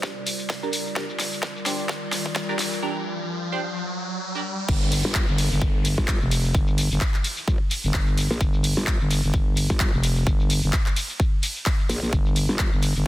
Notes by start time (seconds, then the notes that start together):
Already playing: G3 F4 A#4 D5, riser
0.03 kick, snare, shekere
0.27 open hi-hat, shekere
0.39 shekere
0.50 kick, snare, open hi-hat, shekere
0.63 D4 G4 A#4, shekere
0.73 open hi-hat, shekere
0.87 shekere
0.96 D4 G4 A#4, kick, snare, shekere
1.09 shekere
1.20 snare, open hi-hat, shekere
1.32 shekere
1.43 kick, snare, shekere
1.56 shekere
1.66 D4 G4 C5, snare, open hi-hat, shekere
1.79 shekere
1.89 kick, snare, shekere
2.12 snare, open hi-hat, shekere
2.26 kick, shekere
2.36 kick, snare, shekere
2.49 D4 G4 A#4, shekere
2.59 snare, open hi-hat, shekere
2.73 shekere
2.82 D4 G4 A#4
3.52 D4 G4 C5
4.35 D4 G4 A#4
4.69 G1, kick, ride, crash, downlifter, shekere
4.82 shekere
4.92 open hi-hat, ride, shekere
5.05 G1, shekere
5.15 kick, clap, shekere
5.28 G1, shekere
5.38 open hi-hat, ride, shekere
5.51 G1, shekere
5.61 kick, ride, shekere
5.85 open hi-hat, ride, shekere
5.98 G1, kick, shekere
6.08 kick, clap, ride, shekere
6.21 F1, shekere
6.31 open hi-hat, ride, shekere
6.45 shekere
6.54 G1, kick, ride, shekere
6.67 shekere
6.78 open hi-hat, ride, shekere
6.91 G1, shekere
7.01 kick, clap, shekere
7.14 clap, shekere
7.24 open hi-hat, ride, shekere
7.37 shekere
7.48 G1, kick, ride, shekere
7.71 open hi-hat, ride, shekere
7.84 G1, shekere
7.94 kick, clap, shekere
8.07 shekere
8.18 open hi-hat, ride, shekere
8.31 A#1, shekere
8.41 G1, kick, ride, shekere
8.53 shekere
8.64 open hi-hat, ride, shekere
8.77 G1, shekere
8.87 kick, clap, shekere
9.00 G1, shekere
9.11 open hi-hat, ride, shekere
9.24 G1, shekere
9.33 kick, ride, shekere
9.57 open hi-hat, ride, shekere
9.70 G1, kick, shekere
9.80 kick, clap, shekere
9.93 F1, shekere
10.03 open hi-hat, ride, shekere
10.16 shekere
10.27 G1, kick, ride, shekere
10.40 shekere
10.50 open hi-hat, ride, shekere
10.62 G1, shekere
10.73 kick, clap, shekere
10.86 clap, shekere
10.96 open hi-hat, ride, shekere
11.09 shekere
11.20 kick, ride, shekere
11.43 open hi-hat, ride, shekere
11.56 shekere
11.66 kick, clap, open hi-hat, ride, shekere
11.79 shekere
11.89 A#1, open hi-hat, ride, shekere
12.02 A#1, shekere
12.13 G1, kick, ride, shekere
12.26 shekere
12.36 open hi-hat, ride, shekere
12.49 G1, shekere
12.59 kick, clap, ride, shekere
12.72 G1, shekere
12.82 open hi-hat, ride, shekere
12.96 G1, shekere